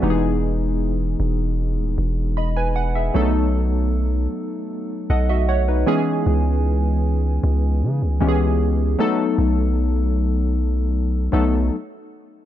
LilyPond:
<<
  \new Staff \with { instrumentName = "Synth keys" } { \time 4/4 \key b \mixolydian \tempo 4 = 77 << { r2. <dis'' b''>16 <b' gis''>16 fis''16 <gis' e''>16~ | <gis' e''>16 r2 r16 <a' dis'' fis''>16 <fis' dis'' e''>16 <cis'' fis''>16 <dis' b'>16 gis''8 | r1 | r1 | } \\ { <e gis b dis' g' gis'>4. r2 r8 | <fis a b d' dis' a'>4. r2 <e gis b cis' gis'>8~ | <e gis b cis' gis'>4 r4. <e gis b cis' g' gis'>4 <fis a b dis' a'>8~ | <fis a b dis' a'>4 r4. <fis a b dis' a'>8 r4 | } >> }
  \new Staff \with { instrumentName = "808-style bass" } { \clef bass \time 4/4 \key b \mixolydian e,,4. e,,8. dis,,16 e,,4. | b,,4. r4 b,,4 r8 | cis,4. cis,8 cis16 cis,16 cis,4 r8 | b,,2~ b,,8 b,,8 r4 | }
>>